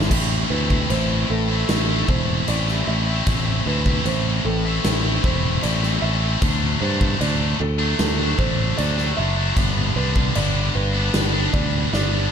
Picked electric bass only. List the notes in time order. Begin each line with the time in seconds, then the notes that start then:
0.11 A1
0.51 D2
0.90 A1
1.30 A1
1.69 A1
2.09 E1
2.49 A1
2.88 A1
3.27 A1
3.66 D2
4.05 A1
4.45 A1
4.85 A1
5.24 E1
5.64 A1
6.02 A1
6.42 D2
6.82 G2
7.21 D2
7.60 D2
7.99 D2
8.39 A1
8.79 D2
9.18 F#1
9.57 G1
9.96 C2
10.36 G1
10.75 G1
11.14 G1
11.54 D2
11.93 G1